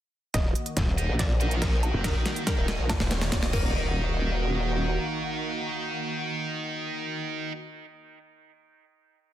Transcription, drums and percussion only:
0.34 kick, snare, closed hi-hat
0.55 closed hi-hat
0.66 closed hi-hat
0.77 kick, snare, closed hi-hat
0.98 closed hi-hat
1.19 kick, snare, closed hi-hat
1.41 closed hi-hat
1.51 closed hi-hat
1.62 kick, snare, closed hi-hat
1.83 closed hi-hat, low woodblock
2.04 kick, snare, closed hi-hat
2.26 snare, closed hi-hat
2.36 closed hi-hat
2.47 kick, snare, closed hi-hat
2.68 snare, closed hi-hat
2.89 kick, snare, closed hi-hat, low woodblock
3.00 snare
3.11 snare, closed hi-hat
3.21 snare, closed hi-hat
3.32 kick, snare, closed hi-hat
3.43 snare
3.53 kick, crash

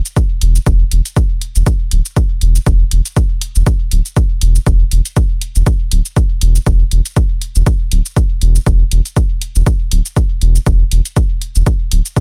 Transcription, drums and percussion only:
0.05 shaker
0.16 kick, shaker
0.41 closed hi-hat
0.55 shaker
0.66 kick, shaker
0.91 closed hi-hat
1.05 closed hi-hat, shaker
1.16 kick, shaker
1.41 closed hi-hat
1.55 shaker
1.66 kick, shaker
1.91 closed hi-hat
2.05 shaker
2.16 kick, shaker
2.41 closed hi-hat
2.55 shaker
2.66 kick, shaker
2.91 closed hi-hat
3.05 closed hi-hat, shaker
3.16 kick, shaker
3.41 closed hi-hat
3.55 shaker
3.66 kick, shaker
3.91 closed hi-hat
4.05 shaker
4.16 kick, shaker
4.41 closed hi-hat
4.55 shaker
4.66 kick, shaker
4.91 closed hi-hat
5.05 closed hi-hat, shaker
5.16 kick, shaker
5.41 closed hi-hat
5.55 shaker
5.66 kick, shaker
5.91 closed hi-hat
6.05 shaker
6.16 kick, shaker
6.41 closed hi-hat
6.55 shaker
6.66 kick, shaker
6.91 closed hi-hat
7.05 closed hi-hat, shaker
7.16 kick, shaker
7.42 closed hi-hat
7.55 shaker
7.66 kick, shaker
7.92 closed hi-hat
8.06 shaker
8.16 kick, shaker
8.41 closed hi-hat
8.55 shaker
8.66 kick, shaker
8.91 closed hi-hat
9.05 closed hi-hat, shaker
9.16 kick, shaker
9.41 closed hi-hat
9.56 shaker
9.66 kick, shaker
9.91 closed hi-hat
10.05 shaker
10.16 kick, shaker
10.41 closed hi-hat
10.55 shaker
10.66 kick, shaker
10.91 closed hi-hat
11.05 closed hi-hat, shaker
11.16 kick, shaker
11.42 closed hi-hat
11.55 shaker
11.66 kick, shaker
11.91 closed hi-hat
12.05 shaker
12.16 kick, shaker

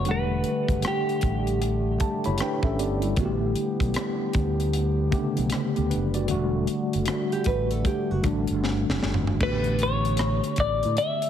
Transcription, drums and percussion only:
0.05 closed hi-hat
0.44 closed hi-hat
0.68 kick, closed hi-hat
0.82 cross-stick, closed hi-hat
1.09 closed hi-hat
1.21 kick, closed hi-hat
1.47 closed hi-hat
1.62 closed hi-hat
2.00 kick, closed hi-hat
2.24 closed hi-hat
2.38 cross-stick, closed hi-hat
2.63 kick
2.79 closed hi-hat
3.02 closed hi-hat
3.16 kick, closed hi-hat
3.56 closed hi-hat
3.80 kick, closed hi-hat
3.94 cross-stick, closed hi-hat
4.33 kick, closed hi-hat
4.60 closed hi-hat
4.73 closed hi-hat
5.12 kick, closed hi-hat
5.37 closed hi-hat
5.50 cross-stick, closed hi-hat
5.76 closed hi-hat
5.91 closed hi-hat
6.14 closed hi-hat
6.28 closed hi-hat
6.67 closed hi-hat
6.93 closed hi-hat
7.06 cross-stick, closed hi-hat
7.32 closed hi-hat
7.44 kick, closed hi-hat
7.71 closed hi-hat
7.85 kick, closed hi-hat
8.24 kick, cross-stick, closed hi-hat
8.47 closed hi-hat
8.64 snare
8.90 snare
9.03 snare
9.14 floor tom
9.27 floor tom
9.40 kick, crash
9.64 closed hi-hat
9.79 closed hi-hat
10.05 closed hi-hat
10.17 cross-stick, closed hi-hat
10.44 closed hi-hat
10.56 kick, closed hi-hat
10.83 closed hi-hat
10.97 closed hi-hat
11.22 closed hi-hat

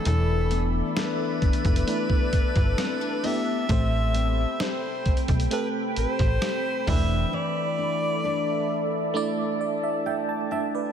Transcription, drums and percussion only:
0.05 closed hi-hat
0.51 closed hi-hat
0.97 snare, closed hi-hat
1.42 kick, closed hi-hat
1.53 closed hi-hat
1.65 kick, closed hi-hat
1.76 closed hi-hat
1.88 closed hi-hat
2.10 kick
2.33 kick, closed hi-hat
2.56 kick, closed hi-hat
2.78 cross-stick, snare, closed hi-hat
3.24 open hi-hat
3.69 kick, closed hi-hat
4.15 closed hi-hat
4.60 snare, closed hi-hat
5.06 kick, closed hi-hat
5.17 closed hi-hat
5.28 kick, closed hi-hat
5.40 closed hi-hat
5.51 closed hi-hat
5.96 closed hi-hat
6.19 kick, closed hi-hat
6.42 cross-stick, snare, closed hi-hat
6.87 kick, open hi-hat

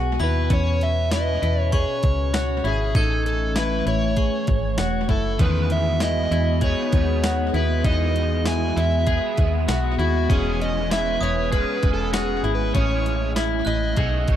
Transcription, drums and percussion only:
0.20 closed hi-hat
0.50 kick, closed hi-hat
0.81 closed hi-hat
1.11 snare, closed hi-hat, tambourine
1.43 closed hi-hat
1.72 kick, closed hi-hat
2.03 kick, closed hi-hat
2.34 snare, closed hi-hat, tambourine
2.65 closed hi-hat
2.95 kick, closed hi-hat
3.26 closed hi-hat
3.56 snare, closed hi-hat, tambourine
3.87 closed hi-hat
4.16 kick, closed hi-hat
4.47 kick, closed hi-hat
4.78 snare, closed hi-hat, tambourine
5.09 kick, closed hi-hat
5.39 kick, closed hi-hat
5.70 closed hi-hat
6.00 snare, closed hi-hat, tambourine
6.32 closed hi-hat
6.61 kick, closed hi-hat
6.92 kick, closed hi-hat
7.24 snare, closed hi-hat, tambourine
7.54 closed hi-hat
7.84 kick, closed hi-hat
8.16 closed hi-hat
8.46 snare, closed hi-hat, tambourine
8.77 closed hi-hat
9.07 kick, closed hi-hat
9.37 kick, closed hi-hat
9.68 snare, closed hi-hat, tambourine
9.99 closed hi-hat
10.30 kick, closed hi-hat
10.61 closed hi-hat
10.91 snare, closed hi-hat, tambourine
11.23 closed hi-hat
11.53 kick, closed hi-hat
11.83 kick, closed hi-hat
12.14 snare, closed hi-hat, tambourine
12.44 closed hi-hat
12.75 kick, closed hi-hat
13.06 closed hi-hat
13.36 snare, closed hi-hat, tambourine
13.67 closed hi-hat
13.96 kick, closed hi-hat
14.28 kick, closed hi-hat

